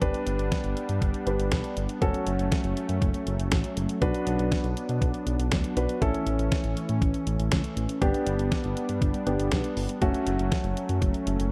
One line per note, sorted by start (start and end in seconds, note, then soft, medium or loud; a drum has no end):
0.01 0.12 G1 loud
0.01 2.00 G3 medium
0.01 2.00 B3 medium
0.01 1.24 D4 medium
0.01 2.00 D4 medium
0.01 1.24 G4 medium
0.01 1.24 B4 medium
0.01 kick loud
0.01 closed hi-hat medium
0.14 closed hi-hat soft
0.27 0.37 G1 loud
0.27 closed hi-hat medium
0.39 0.50 G1 loud
0.39 closed hi-hat soft
0.52 kick loud
0.52 snare loud
0.52 closed hi-hat medium
0.64 0.75 G1 medium
0.64 closed hi-hat soft
0.77 closed hi-hat medium
0.89 1.00 G2 medium
0.89 closed hi-hat medium
1.02 1.12 G1 loud
1.02 kick loud
1.02 closed hi-hat medium
1.14 closed hi-hat soft
1.27 1.37 G1 loud
1.27 2.02 D4 medium
1.27 2.02 G4 medium
1.27 2.02 B4 medium
1.27 closed hi-hat medium
1.39 1.50 G1 loud
1.39 closed hi-hat medium
1.52 1.62 B1 loud
1.52 kick loud
1.52 snare loud
1.52 closed hi-hat medium
1.64 closed hi-hat medium
1.77 1.87 G1 medium
1.77 closed hi-hat medium
1.89 closed hi-hat medium
2.02 2.12 F#1 loud
2.02 5.98 F#3 medium
2.02 4.00 A3 medium
2.02 3.98 C#4 medium
2.02 4.00 C#4 medium
2.02 3.98 F#4 medium
2.02 3.98 A4 medium
2.02 kick loud
2.02 closed hi-hat medium
2.14 closed hi-hat soft
2.27 2.37 F#1 medium
2.27 closed hi-hat medium
2.39 2.50 F#1 loud
2.39 closed hi-hat soft
2.52 kick loud
2.52 snare loud
2.52 closed hi-hat medium
2.64 2.75 F#1 loud
2.64 closed hi-hat soft
2.77 closed hi-hat medium
2.89 3.00 F#2 loud
2.89 closed hi-hat medium
3.02 3.12 F#1 loud
3.02 kick loud
3.02 closed hi-hat medium
3.14 closed hi-hat soft
3.27 3.37 F#1 loud
3.27 closed hi-hat medium
3.39 3.50 F#1 loud
3.39 closed hi-hat medium
3.52 3.62 A1 medium
3.52 kick loud
3.52 snare loud
3.52 closed hi-hat medium
3.64 closed hi-hat medium
3.77 3.87 F#1 medium
3.77 closed hi-hat medium
3.89 closed hi-hat medium
4.01 4.12 B1 loud
4.01 6.00 D4 medium
4.01 5.73 D4 medium
4.01 5.73 F#4 medium
4.01 5.73 B4 medium
4.01 kick loud
4.01 closed hi-hat medium
4.14 closed hi-hat soft
4.27 4.37 B1 medium
4.27 closed hi-hat medium
4.39 4.50 B1 loud
4.39 closed hi-hat soft
4.52 kick loud
4.52 snare loud
4.52 closed hi-hat medium
4.64 4.75 B1 loud
4.64 closed hi-hat soft
4.77 closed hi-hat medium
4.89 5.00 B2 loud
4.89 closed hi-hat medium
5.02 5.12 B1 loud
5.02 kick loud
5.02 closed hi-hat medium
5.14 closed hi-hat soft
5.27 5.37 B1 loud
5.27 closed hi-hat medium
5.39 5.50 B1 loud
5.39 closed hi-hat medium
5.51 5.62 D2 medium
5.51 kick loud
5.51 snare loud
5.51 closed hi-hat medium
5.64 closed hi-hat medium
5.77 5.87 B1 loud
5.77 6.02 D4 medium
5.77 6.02 F#4 soft
5.77 6.02 B4 medium
5.77 closed hi-hat medium
5.89 closed hi-hat medium
6.02 6.12 A1 loud
6.02 8.00 E3 medium
6.02 8.00 C#4 medium
6.02 7.98 C#4 medium
6.02 7.98 E4 medium
6.02 7.98 A4 medium
6.02 kick loud
6.02 closed hi-hat medium
6.14 closed hi-hat soft
6.27 6.37 A1 loud
6.27 closed hi-hat medium
6.39 6.50 A1 loud
6.39 closed hi-hat soft
6.52 kick loud
6.52 snare loud
6.52 closed hi-hat medium
6.64 6.75 A1 loud
6.64 closed hi-hat soft
6.77 closed hi-hat medium
6.89 7.00 A2 medium
6.89 closed hi-hat medium
7.02 7.12 A1 loud
7.02 kick loud
7.02 closed hi-hat medium
7.14 closed hi-hat soft
7.27 7.37 A1 loud
7.27 closed hi-hat medium
7.39 7.50 A1 loud
7.39 closed hi-hat medium
7.51 7.62 C#2 medium
7.51 kick loud
7.51 snare loud
7.51 closed hi-hat medium
7.64 closed hi-hat medium
7.77 7.87 A1 medium
7.77 closed hi-hat medium
7.89 closed hi-hat medium
8.02 8.12 G1 loud
8.02 10.00 G3 medium
8.02 9.24 B3 medium
8.02 10.00 B3 medium
8.02 9.24 D4 medium
8.02 10.00 D4 medium
8.02 9.24 G4 medium
8.02 kick loud
8.02 closed hi-hat medium
8.14 closed hi-hat soft
8.27 8.37 G1 loud
8.27 closed hi-hat medium
8.39 8.50 G1 loud
8.39 closed hi-hat soft
8.52 kick loud
8.52 snare loud
8.52 closed hi-hat medium
8.64 8.75 G1 loud
8.64 closed hi-hat soft
8.77 closed hi-hat medium
8.89 9.00 G2 medium
8.89 closed hi-hat medium
9.02 9.12 G1 loud
9.02 kick loud
9.02 closed hi-hat medium
9.14 closed hi-hat soft
9.27 9.37 G1 loud
9.27 10.02 B3 medium
9.27 10.02 D4 medium
9.27 10.02 G4 medium
9.27 closed hi-hat medium
9.39 9.50 G1 loud
9.39 closed hi-hat medium
9.51 9.62 B1 medium
9.51 kick loud
9.51 snare loud
9.51 closed hi-hat medium
9.64 closed hi-hat medium
9.77 9.87 G1 medium
9.77 open hi-hat medium
9.89 closed hi-hat medium
10.01 10.12 F#1 loud
10.01 11.52 F#3 medium
10.01 11.52 A3 medium
10.01 11.52 C#4 medium
10.01 11.52 F#4 medium
10.01 kick loud
10.01 closed hi-hat medium
10.14 closed hi-hat soft
10.27 10.37 F#1 loud
10.27 closed hi-hat medium
10.39 10.50 F#1 loud
10.39 closed hi-hat soft
10.52 kick loud
10.52 snare loud
10.52 closed hi-hat medium
10.64 10.75 F#1 medium
10.64 closed hi-hat soft
10.77 closed hi-hat medium
10.89 11.00 F#2 medium
10.89 closed hi-hat medium
11.02 11.12 F#1 loud
11.02 kick loud
11.02 closed hi-hat medium
11.14 closed hi-hat medium
11.27 11.37 F#1 loud
11.27 closed hi-hat medium
11.39 11.50 F#1 loud
11.39 closed hi-hat medium